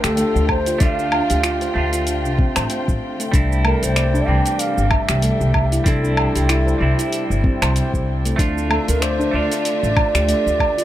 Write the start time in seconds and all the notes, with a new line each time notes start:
Already playing: D3 A3 D4 F4 G5
0.04 D2 G4 A4, finger snap, open hi-hat, shaker
0.17 A3, open hi-hat, shaker
0.35 D2, shaker
0.49 C5, kick, low woodblock
0.66 F4, open hi-hat, shaker
0.78 D2 A3 D4 F5, kick, open hi-hat, shaker
0.82 F4
0.99 D4, shaker
1.12 low woodblock
1.30 D2 G4, open hi-hat, shaker
1.44 F4, finger snap, open hi-hat, shaker
1.61 C5, open hi-hat, shaker
1.74 D2 A3 D4 F4
1.93 F4, open hi-hat, shaker
2.07 open hi-hat, shaker
2.25 C2, shaker
2.39 C4, kick
2.56 A1 C5, finger snap, open hi-hat, low woodblock, shaker
2.70 open hi-hat, shaker
2.88 A1, kick, shaker
3.20 A3, open hi-hat, shaker
3.32 C2 C3 G3 C4 D4 E4, kick, open hi-hat, shaker
3.52 shaker
3.65 A3 A#4, low woodblock
3.83 C2 C5, open hi-hat, shaker
3.96 D5, finger snap, open hi-hat, shaker
4.14 D4, shaker
4.26 C2 E3 G3 C4 G5
4.46 open hi-hat, shaker
4.59 F5, open hi-hat, shaker
4.78 G1, shaker
4.91 E5, kick, low woodblock
5.09 C2 G4, finger snap, open hi-hat, shaker
5.22 A3, open hi-hat, shaker
5.41 C2, shaker
5.54 kick, low woodblock
5.72 E4, open hi-hat, shaker
5.84 C2 G3 C4 D4 E4 A4, kick, open hi-hat, shaker
6.04 D4, shaker
6.17 low woodblock
6.36 C2 G4, open hi-hat, shaker
6.49 E4, finger snap, open hi-hat, shaker
6.67 C5, shaker
6.78 C2 G3 C4 E4
6.99 E4, open hi-hat, shaker
7.13 open hi-hat, shaker
7.30 G1, shaker
7.44 C4, kick
7.62 C2 C5, finger snap, open hi-hat, low woodblock, shaker
7.76 open hi-hat, shaker
7.94 C2, kick, shaker
8.25 A3, open hi-hat, shaker
8.36 D2 D3 A3 D4 F4 E5, kick, open hi-hat, shaker
8.40 F4
8.58 shaker
8.70 A3 A4, low woodblock
8.88 D2 A#4, open hi-hat, shaker
9.02 C5 D5, finger snap, open hi-hat, shaker
9.20 D4, shaker
9.31 D2 A3 D4 F4 D5
9.52 open hi-hat, shaker
9.65 open hi-hat, shaker
9.83 A1, shaker
9.97 kick, low woodblock
10.15 D2 G4, finger snap, open hi-hat, shaker
10.28 A3, open hi-hat, shaker
10.46 D2, shaker
10.60 kick, low woodblock
10.78 F4, open hi-hat, shaker